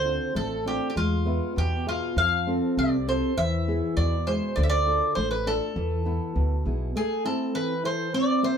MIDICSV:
0, 0, Header, 1, 4, 480
1, 0, Start_track
1, 0, Tempo, 604230
1, 761, Time_signature, 2, 2, 24, 8
1, 3157, Tempo, 594648
1, 6872, End_track
2, 0, Start_track
2, 0, Title_t, "Bouzouki"
2, 0, Program_c, 0, 25
2, 0, Note_on_c, 0, 72, 96
2, 259, Note_off_c, 0, 72, 0
2, 289, Note_on_c, 0, 69, 94
2, 509, Note_off_c, 0, 69, 0
2, 536, Note_on_c, 0, 67, 86
2, 704, Note_off_c, 0, 67, 0
2, 713, Note_on_c, 0, 67, 69
2, 763, Note_off_c, 0, 67, 0
2, 773, Note_on_c, 0, 65, 93
2, 1217, Note_off_c, 0, 65, 0
2, 1257, Note_on_c, 0, 67, 92
2, 1474, Note_off_c, 0, 67, 0
2, 1498, Note_on_c, 0, 65, 87
2, 1714, Note_off_c, 0, 65, 0
2, 1731, Note_on_c, 0, 77, 103
2, 2174, Note_off_c, 0, 77, 0
2, 2213, Note_on_c, 0, 74, 93
2, 2431, Note_off_c, 0, 74, 0
2, 2451, Note_on_c, 0, 72, 91
2, 2682, Note_on_c, 0, 76, 110
2, 2692, Note_off_c, 0, 72, 0
2, 3148, Note_off_c, 0, 76, 0
2, 3151, Note_on_c, 0, 74, 88
2, 3395, Note_on_c, 0, 72, 94
2, 3404, Note_off_c, 0, 74, 0
2, 3628, Note_on_c, 0, 74, 94
2, 3647, Note_off_c, 0, 72, 0
2, 3686, Note_off_c, 0, 74, 0
2, 3689, Note_on_c, 0, 76, 82
2, 3736, Note_off_c, 0, 76, 0
2, 3739, Note_on_c, 0, 74, 111
2, 4105, Note_off_c, 0, 74, 0
2, 4108, Note_on_c, 0, 72, 85
2, 4230, Note_off_c, 0, 72, 0
2, 4234, Note_on_c, 0, 71, 82
2, 4363, Note_off_c, 0, 71, 0
2, 4366, Note_on_c, 0, 69, 89
2, 5294, Note_off_c, 0, 69, 0
2, 5573, Note_on_c, 0, 68, 89
2, 5803, Note_off_c, 0, 68, 0
2, 5806, Note_on_c, 0, 69, 82
2, 6027, Note_off_c, 0, 69, 0
2, 6044, Note_on_c, 0, 71, 94
2, 6265, Note_off_c, 0, 71, 0
2, 6288, Note_on_c, 0, 72, 90
2, 6507, Note_off_c, 0, 72, 0
2, 6523, Note_on_c, 0, 74, 97
2, 6761, Note_off_c, 0, 74, 0
2, 6764, Note_on_c, 0, 72, 89
2, 6872, Note_off_c, 0, 72, 0
2, 6872, End_track
3, 0, Start_track
3, 0, Title_t, "Nylon-string guitar"
3, 0, Program_c, 1, 24
3, 0, Note_on_c, 1, 50, 71
3, 31, Note_on_c, 1, 60, 54
3, 34, Note_on_c, 1, 62, 50
3, 36, Note_on_c, 1, 65, 64
3, 263, Note_off_c, 1, 50, 0
3, 275, Note_on_c, 1, 57, 60
3, 421, Note_off_c, 1, 60, 0
3, 421, Note_off_c, 1, 62, 0
3, 423, Note_off_c, 1, 65, 0
3, 518, Note_on_c, 1, 60, 50
3, 522, Note_on_c, 1, 62, 45
3, 527, Note_on_c, 1, 65, 54
3, 712, Note_off_c, 1, 60, 0
3, 714, Note_off_c, 1, 62, 0
3, 717, Note_off_c, 1, 65, 0
3, 745, Note_off_c, 1, 57, 0
3, 759, Note_on_c, 1, 56, 68
3, 998, Note_on_c, 1, 59, 54
3, 1004, Note_on_c, 1, 76, 45
3, 1005, Note_on_c, 1, 71, 57
3, 1227, Note_off_c, 1, 56, 0
3, 1240, Note_on_c, 1, 47, 63
3, 1385, Note_off_c, 1, 59, 0
3, 1387, Note_off_c, 1, 76, 0
3, 1389, Note_off_c, 1, 71, 0
3, 1479, Note_on_c, 1, 59, 48
3, 1486, Note_on_c, 1, 68, 55
3, 1486, Note_on_c, 1, 76, 44
3, 1672, Note_off_c, 1, 59, 0
3, 1675, Note_off_c, 1, 76, 0
3, 1677, Note_off_c, 1, 68, 0
3, 1707, Note_off_c, 1, 47, 0
3, 1724, Note_on_c, 1, 53, 68
3, 1961, Note_on_c, 1, 60, 52
3, 1965, Note_on_c, 1, 65, 52
3, 1969, Note_on_c, 1, 69, 55
3, 2188, Note_off_c, 1, 53, 0
3, 2204, Note_on_c, 1, 48, 68
3, 2345, Note_off_c, 1, 60, 0
3, 2347, Note_off_c, 1, 65, 0
3, 2349, Note_off_c, 1, 69, 0
3, 2441, Note_on_c, 1, 60, 49
3, 2444, Note_on_c, 1, 65, 47
3, 2447, Note_on_c, 1, 69, 50
3, 2633, Note_off_c, 1, 60, 0
3, 2634, Note_off_c, 1, 65, 0
3, 2636, Note_off_c, 1, 69, 0
3, 2667, Note_off_c, 1, 48, 0
3, 2679, Note_on_c, 1, 52, 70
3, 2920, Note_on_c, 1, 59, 50
3, 2924, Note_on_c, 1, 64, 53
3, 2927, Note_on_c, 1, 68, 59
3, 3142, Note_off_c, 1, 52, 0
3, 3156, Note_on_c, 1, 47, 70
3, 3303, Note_off_c, 1, 59, 0
3, 3305, Note_off_c, 1, 64, 0
3, 3308, Note_off_c, 1, 68, 0
3, 3398, Note_on_c, 1, 56, 50
3, 3402, Note_on_c, 1, 64, 46
3, 3406, Note_on_c, 1, 68, 57
3, 3592, Note_off_c, 1, 56, 0
3, 3594, Note_off_c, 1, 64, 0
3, 3597, Note_off_c, 1, 68, 0
3, 3626, Note_off_c, 1, 47, 0
3, 3642, Note_on_c, 1, 50, 62
3, 3874, Note_on_c, 1, 62, 54
3, 3877, Note_on_c, 1, 65, 50
3, 3881, Note_on_c, 1, 69, 65
3, 4110, Note_off_c, 1, 50, 0
3, 4125, Note_on_c, 1, 57, 69
3, 4264, Note_off_c, 1, 62, 0
3, 4264, Note_off_c, 1, 65, 0
3, 4267, Note_off_c, 1, 69, 0
3, 4359, Note_on_c, 1, 62, 52
3, 4362, Note_on_c, 1, 65, 47
3, 4366, Note_on_c, 1, 69, 57
3, 4554, Note_off_c, 1, 62, 0
3, 4556, Note_off_c, 1, 65, 0
3, 4558, Note_off_c, 1, 69, 0
3, 4591, Note_off_c, 1, 57, 0
3, 4604, Note_on_c, 1, 52, 65
3, 4835, Note_on_c, 1, 59, 50
3, 4838, Note_on_c, 1, 64, 46
3, 4843, Note_on_c, 1, 71, 57
3, 5071, Note_off_c, 1, 52, 0
3, 5080, Note_on_c, 1, 47, 68
3, 5223, Note_off_c, 1, 59, 0
3, 5225, Note_off_c, 1, 64, 0
3, 5227, Note_off_c, 1, 71, 0
3, 5325, Note_on_c, 1, 59, 49
3, 5329, Note_on_c, 1, 64, 44
3, 5331, Note_on_c, 1, 68, 47
3, 5516, Note_off_c, 1, 59, 0
3, 5519, Note_off_c, 1, 64, 0
3, 5520, Note_off_c, 1, 68, 0
3, 5547, Note_off_c, 1, 47, 0
3, 5564, Note_on_c, 1, 57, 70
3, 5801, Note_on_c, 1, 64, 52
3, 5805, Note_on_c, 1, 60, 59
3, 5806, Note_on_c, 1, 69, 47
3, 6028, Note_off_c, 1, 57, 0
3, 6046, Note_on_c, 1, 52, 67
3, 6184, Note_off_c, 1, 64, 0
3, 6186, Note_off_c, 1, 69, 0
3, 6188, Note_off_c, 1, 60, 0
3, 6275, Note_on_c, 1, 64, 49
3, 6281, Note_on_c, 1, 69, 44
3, 6285, Note_on_c, 1, 72, 55
3, 6469, Note_off_c, 1, 64, 0
3, 6470, Note_off_c, 1, 69, 0
3, 6474, Note_off_c, 1, 72, 0
3, 6507, Note_off_c, 1, 52, 0
3, 6518, Note_on_c, 1, 60, 74
3, 6752, Note_on_c, 1, 58, 55
3, 6757, Note_on_c, 1, 72, 54
3, 6761, Note_on_c, 1, 76, 63
3, 6872, Note_off_c, 1, 58, 0
3, 6872, Note_off_c, 1, 60, 0
3, 6872, Note_off_c, 1, 72, 0
3, 6872, Note_off_c, 1, 76, 0
3, 6872, End_track
4, 0, Start_track
4, 0, Title_t, "Upright bass"
4, 0, Program_c, 2, 32
4, 0, Note_on_c, 2, 38, 102
4, 136, Note_off_c, 2, 38, 0
4, 282, Note_on_c, 2, 33, 89
4, 619, Note_off_c, 2, 33, 0
4, 765, Note_on_c, 2, 40, 100
4, 1101, Note_off_c, 2, 40, 0
4, 1247, Note_on_c, 2, 40, 83
4, 1582, Note_off_c, 2, 40, 0
4, 1719, Note_on_c, 2, 41, 97
4, 2056, Note_off_c, 2, 41, 0
4, 2204, Note_on_c, 2, 36, 88
4, 2538, Note_off_c, 2, 36, 0
4, 2681, Note_on_c, 2, 40, 95
4, 3015, Note_off_c, 2, 40, 0
4, 3153, Note_on_c, 2, 40, 93
4, 3493, Note_off_c, 2, 40, 0
4, 3638, Note_on_c, 2, 38, 101
4, 3977, Note_off_c, 2, 38, 0
4, 4120, Note_on_c, 2, 33, 96
4, 4458, Note_off_c, 2, 33, 0
4, 4599, Note_on_c, 2, 40, 101
4, 4937, Note_off_c, 2, 40, 0
4, 5080, Note_on_c, 2, 38, 80
4, 5298, Note_off_c, 2, 38, 0
4, 5320, Note_on_c, 2, 35, 76
4, 5538, Note_off_c, 2, 35, 0
4, 6872, End_track
0, 0, End_of_file